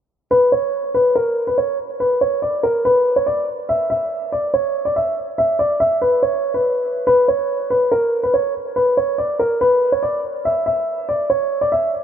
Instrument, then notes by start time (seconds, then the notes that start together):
upright piano
0.31 B4
0.52 C#5
0.95 B4
1.15 A#4
1.47 B4
1.58 C#5
2.00 B4
2.21 C#5
2.42 D5
2.63 A#4
2.85 B4
3.16 C#5
3.26 D5
3.69 E5
3.90 E5
4.32 D5
4.54 C#5
4.85 D5
4.96 E5
5.38 E5
5.59 D5
5.80 E5
6.02 B4
6.23 C#5
6.54 B4
7.07 B4
7.28 C#5
7.70 B4
7.92 A#4
8.23 B4
8.34 C#5
8.76 B4
8.97 C#5
9.18 D5
9.39 A#4
9.61 B4
9.92 C#5
10.03 D5
10.45 E5
10.66 E5
11.09 D5
11.30 C#5
11.61 D5
11.72 E5